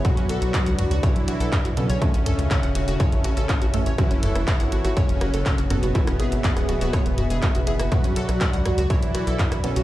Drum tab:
HH |xxxxxxxxxxxxxxxx|xxxxxxxxxxxxxxxx|xxxxxxxxxxxxxxxx|xxxxxxxxxxxxxxxx|
CP |----x-------x---|----x-------x---|----x-------x---|----x-------x---|
SD |----------------|----------------|r--r---r--r---r-|-r---r--r---r--r|
T2 |o-----o-----o---|--o-----o-----o-|--o-----o-----o-|----o-----o-----|
BD |o---o---o---o---|o---o---o---o---|o---o---o---o---|o---o---o---o---|

HH |xxxxxxxxxxxxxxxx|
CP |----x-------x---|
SD |---r--r---r--r--|
T2 |o-----o-----o---|
BD |o---o---o---o---|